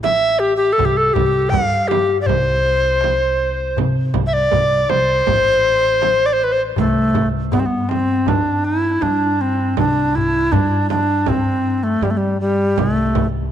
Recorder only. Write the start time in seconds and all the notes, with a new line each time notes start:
0.03 E5
0.39 G4
0.57 G4
0.73 A4
0.85 G4
0.97 A4
1.14 G4
1.49 F5
1.88 G4
2.21 D5
2.26 C5
4.27 E5
4.33 D5
4.89 C5
6.26 D5
6.33 C5
6.44 B4
6.52 C5
6.78 A3
7.52 B3
7.60 C4
7.66 B3
7.89 C4
8.28 D4
8.65 E4
9.02 D4
9.41 C4
9.78 D4
10.15 E4
10.52 D4
10.90 D4
11.28 C4
11.83 A3
12.03 G3
12.10 A3
12.17 G3
12.41 G3
12.78 A3